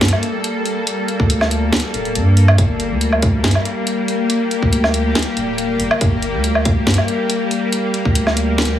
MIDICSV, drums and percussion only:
0, 0, Header, 1, 2, 480
1, 0, Start_track
1, 0, Key_signature, -2, "minor"
1, 0, Tempo, 428571
1, 973, Time_signature, 4, 2, 24, 8
1, 9845, End_track
2, 0, Start_track
2, 0, Title_t, "Drums"
2, 13, Note_on_c, 9, 38, 127
2, 13, Note_on_c, 9, 42, 53
2, 56, Note_off_c, 9, 42, 0
2, 56, Note_on_c, 9, 42, 68
2, 94, Note_off_c, 9, 42, 0
2, 94, Note_on_c, 9, 42, 88
2, 125, Note_off_c, 9, 38, 0
2, 142, Note_on_c, 9, 77, 52
2, 206, Note_off_c, 9, 42, 0
2, 254, Note_off_c, 9, 77, 0
2, 255, Note_on_c, 9, 42, 56
2, 367, Note_off_c, 9, 42, 0
2, 494, Note_on_c, 9, 42, 82
2, 606, Note_off_c, 9, 42, 0
2, 734, Note_on_c, 9, 46, 93
2, 846, Note_off_c, 9, 46, 0
2, 974, Note_on_c, 9, 42, 81
2, 1086, Note_off_c, 9, 42, 0
2, 1214, Note_on_c, 9, 42, 54
2, 1326, Note_off_c, 9, 42, 0
2, 1341, Note_on_c, 9, 36, 62
2, 1453, Note_off_c, 9, 36, 0
2, 1454, Note_on_c, 9, 42, 79
2, 1566, Note_off_c, 9, 42, 0
2, 1581, Note_on_c, 9, 38, 39
2, 1581, Note_on_c, 9, 77, 57
2, 1693, Note_off_c, 9, 38, 0
2, 1693, Note_off_c, 9, 77, 0
2, 1693, Note_on_c, 9, 42, 76
2, 1805, Note_off_c, 9, 42, 0
2, 1933, Note_on_c, 9, 38, 127
2, 1933, Note_on_c, 9, 42, 49
2, 1976, Note_off_c, 9, 42, 0
2, 1976, Note_on_c, 9, 42, 66
2, 2013, Note_off_c, 9, 42, 0
2, 2013, Note_on_c, 9, 42, 81
2, 2045, Note_off_c, 9, 38, 0
2, 2125, Note_off_c, 9, 42, 0
2, 2173, Note_on_c, 9, 42, 50
2, 2285, Note_off_c, 9, 42, 0
2, 2300, Note_on_c, 9, 42, 36
2, 2412, Note_off_c, 9, 42, 0
2, 2413, Note_on_c, 9, 42, 80
2, 2525, Note_off_c, 9, 42, 0
2, 2653, Note_on_c, 9, 46, 95
2, 2765, Note_off_c, 9, 46, 0
2, 2781, Note_on_c, 9, 77, 86
2, 2893, Note_off_c, 9, 77, 0
2, 2894, Note_on_c, 9, 36, 116
2, 2894, Note_on_c, 9, 42, 78
2, 3006, Note_off_c, 9, 36, 0
2, 3006, Note_off_c, 9, 42, 0
2, 3133, Note_on_c, 9, 42, 52
2, 3245, Note_off_c, 9, 42, 0
2, 3373, Note_on_c, 9, 42, 77
2, 3485, Note_off_c, 9, 42, 0
2, 3500, Note_on_c, 9, 77, 55
2, 3611, Note_on_c, 9, 42, 75
2, 3612, Note_off_c, 9, 77, 0
2, 3613, Note_on_c, 9, 36, 105
2, 3723, Note_off_c, 9, 42, 0
2, 3725, Note_off_c, 9, 36, 0
2, 3853, Note_on_c, 9, 38, 123
2, 3853, Note_on_c, 9, 42, 48
2, 3895, Note_off_c, 9, 42, 0
2, 3895, Note_on_c, 9, 42, 62
2, 3933, Note_off_c, 9, 42, 0
2, 3933, Note_on_c, 9, 42, 78
2, 3965, Note_off_c, 9, 38, 0
2, 3979, Note_on_c, 9, 77, 57
2, 4045, Note_off_c, 9, 42, 0
2, 4091, Note_off_c, 9, 77, 0
2, 4093, Note_on_c, 9, 42, 53
2, 4205, Note_off_c, 9, 42, 0
2, 4332, Note_on_c, 9, 42, 80
2, 4444, Note_off_c, 9, 42, 0
2, 4573, Note_on_c, 9, 46, 94
2, 4685, Note_off_c, 9, 46, 0
2, 4813, Note_on_c, 9, 42, 77
2, 4925, Note_off_c, 9, 42, 0
2, 5053, Note_on_c, 9, 42, 52
2, 5165, Note_off_c, 9, 42, 0
2, 5180, Note_on_c, 9, 36, 57
2, 5292, Note_off_c, 9, 36, 0
2, 5293, Note_on_c, 9, 42, 78
2, 5405, Note_off_c, 9, 42, 0
2, 5420, Note_on_c, 9, 38, 34
2, 5420, Note_on_c, 9, 77, 56
2, 5532, Note_off_c, 9, 38, 0
2, 5532, Note_off_c, 9, 77, 0
2, 5532, Note_on_c, 9, 42, 70
2, 5644, Note_off_c, 9, 42, 0
2, 5772, Note_on_c, 9, 38, 114
2, 5772, Note_on_c, 9, 42, 49
2, 5814, Note_off_c, 9, 42, 0
2, 5814, Note_on_c, 9, 42, 66
2, 5852, Note_off_c, 9, 42, 0
2, 5852, Note_on_c, 9, 42, 82
2, 5884, Note_off_c, 9, 38, 0
2, 5964, Note_off_c, 9, 42, 0
2, 6012, Note_on_c, 9, 42, 49
2, 6124, Note_off_c, 9, 42, 0
2, 6252, Note_on_c, 9, 42, 76
2, 6364, Note_off_c, 9, 42, 0
2, 6492, Note_on_c, 9, 46, 96
2, 6604, Note_off_c, 9, 46, 0
2, 6618, Note_on_c, 9, 77, 86
2, 6730, Note_off_c, 9, 77, 0
2, 6732, Note_on_c, 9, 42, 82
2, 6733, Note_on_c, 9, 36, 114
2, 6844, Note_off_c, 9, 42, 0
2, 6845, Note_off_c, 9, 36, 0
2, 6971, Note_on_c, 9, 42, 52
2, 7083, Note_off_c, 9, 42, 0
2, 7212, Note_on_c, 9, 42, 79
2, 7324, Note_off_c, 9, 42, 0
2, 7339, Note_on_c, 9, 77, 57
2, 7451, Note_off_c, 9, 77, 0
2, 7452, Note_on_c, 9, 42, 77
2, 7453, Note_on_c, 9, 36, 105
2, 7564, Note_off_c, 9, 42, 0
2, 7565, Note_off_c, 9, 36, 0
2, 7692, Note_on_c, 9, 38, 116
2, 7692, Note_on_c, 9, 42, 51
2, 7734, Note_off_c, 9, 42, 0
2, 7734, Note_on_c, 9, 42, 64
2, 7772, Note_off_c, 9, 42, 0
2, 7772, Note_on_c, 9, 42, 81
2, 7804, Note_off_c, 9, 38, 0
2, 7818, Note_on_c, 9, 77, 55
2, 7884, Note_off_c, 9, 42, 0
2, 7930, Note_off_c, 9, 77, 0
2, 7932, Note_on_c, 9, 42, 52
2, 8044, Note_off_c, 9, 42, 0
2, 8172, Note_on_c, 9, 42, 78
2, 8284, Note_off_c, 9, 42, 0
2, 8412, Note_on_c, 9, 46, 102
2, 8524, Note_off_c, 9, 46, 0
2, 8652, Note_on_c, 9, 42, 85
2, 8764, Note_off_c, 9, 42, 0
2, 8892, Note_on_c, 9, 42, 57
2, 9004, Note_off_c, 9, 42, 0
2, 9021, Note_on_c, 9, 36, 56
2, 9132, Note_on_c, 9, 42, 85
2, 9133, Note_off_c, 9, 36, 0
2, 9244, Note_off_c, 9, 42, 0
2, 9259, Note_on_c, 9, 38, 37
2, 9259, Note_on_c, 9, 77, 50
2, 9371, Note_off_c, 9, 38, 0
2, 9371, Note_off_c, 9, 77, 0
2, 9372, Note_on_c, 9, 42, 81
2, 9484, Note_off_c, 9, 42, 0
2, 9612, Note_on_c, 9, 38, 116
2, 9612, Note_on_c, 9, 42, 52
2, 9655, Note_off_c, 9, 42, 0
2, 9655, Note_on_c, 9, 42, 67
2, 9691, Note_off_c, 9, 42, 0
2, 9691, Note_on_c, 9, 42, 80
2, 9724, Note_off_c, 9, 38, 0
2, 9803, Note_off_c, 9, 42, 0
2, 9845, End_track
0, 0, End_of_file